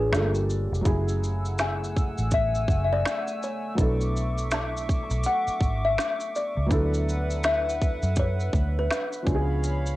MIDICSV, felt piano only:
0, 0, Header, 1, 2, 480
1, 0, Start_track
1, 0, Key_signature, 3, "minor"
1, 0, Tempo, 731707
1, 559, Time_signature, 4, 2, 24, 8
1, 6535, End_track
2, 0, Start_track
2, 0, Title_t, "Felt piano"
2, 0, Program_c, 0, 0
2, 0, Control_c, 0, 64, 127
2, 0, Note_on_c, 0, 62, 56
2, 0, Note_on_c, 0, 65, 64
2, 0, Note_on_c, 0, 68, 65
2, 0, Note_on_c, 0, 71, 68
2, 0, Note_on_c, 0, 73, 68
2, 76, Note_off_c, 0, 62, 0
2, 76, Note_on_c, 0, 55, 68
2, 80, Note_on_c, 0, 57, 53
2, 86, Note_on_c, 0, 62, 79
2, 87, Note_off_c, 0, 73, 0
2, 87, Control_c, 0, 64, 0
2, 89, Note_off_c, 0, 71, 0
2, 90, Note_off_c, 0, 65, 0
2, 90, Note_on_c, 0, 65, 69
2, 95, Note_on_c, 0, 69, 77
2, 124, Note_on_c, 0, 58, 76
2, 131, Note_off_c, 0, 57, 0
2, 184, Control_c, 0, 64, 127
2, 206, Note_off_c, 0, 68, 0
2, 532, Note_on_c, 0, 54, 82
2, 541, Note_on_c, 0, 57, 67
2, 551, Note_on_c, 0, 49, 63
2, 558, Note_off_c, 0, 55, 0
2, 560, Note_on_c, 0, 64, 76
2, 562, Note_off_c, 0, 62, 0
2, 564, Note_off_c, 0, 65, 0
2, 567, Note_off_c, 0, 69, 0
2, 567, Control_c, 0, 64, 0
2, 569, Note_on_c, 0, 68, 86
2, 581, Note_off_c, 0, 58, 0
2, 695, Control_c, 0, 64, 127
2, 2439, Note_off_c, 0, 54, 0
2, 2444, Note_off_c, 0, 57, 0
2, 2449, Note_off_c, 0, 49, 0
2, 2453, Note_off_c, 0, 64, 0
2, 2458, Note_off_c, 0, 68, 0
2, 2461, Note_on_c, 0, 54, 65
2, 2470, Note_on_c, 0, 59, 65
2, 2480, Note_on_c, 0, 62, 64
2, 2487, Control_c, 0, 64, 0
2, 2488, Note_on_c, 0, 64, 57
2, 2498, Note_on_c, 0, 69, 80
2, 2610, Control_c, 0, 64, 127
2, 4362, Note_off_c, 0, 54, 0
2, 4368, Note_off_c, 0, 59, 0
2, 4372, Note_on_c, 0, 54, 77
2, 4373, Note_off_c, 0, 62, 0
2, 4378, Note_off_c, 0, 64, 0
2, 4382, Note_off_c, 0, 69, 0
2, 4382, Note_on_c, 0, 59, 72
2, 4391, Note_on_c, 0, 62, 83
2, 4401, Note_on_c, 0, 64, 74
2, 4407, Control_c, 0, 64, 0
2, 4409, Note_on_c, 0, 69, 91
2, 4508, Control_c, 0, 64, 127
2, 6039, Note_off_c, 0, 54, 0
2, 6044, Note_off_c, 0, 59, 0
2, 6049, Note_off_c, 0, 62, 0
2, 6052, Note_on_c, 0, 53, 69
2, 6054, Note_off_c, 0, 64, 0
2, 6058, Note_off_c, 0, 69, 0
2, 6061, Note_on_c, 0, 59, 59
2, 6072, Note_on_c, 0, 61, 57
2, 6080, Note_on_c, 0, 62, 56
2, 6088, Control_c, 0, 64, 0
2, 6089, Note_on_c, 0, 66, 58
2, 6133, Note_on_c, 0, 68, 84
2, 6136, Note_off_c, 0, 66, 0
2, 6215, Control_c, 0, 64, 127
2, 6535, Note_off_c, 0, 53, 0
2, 6535, Note_off_c, 0, 59, 0
2, 6535, Note_off_c, 0, 61, 0
2, 6535, Note_off_c, 0, 62, 0
2, 6535, Note_off_c, 0, 68, 0
2, 6535, End_track
0, 0, End_of_file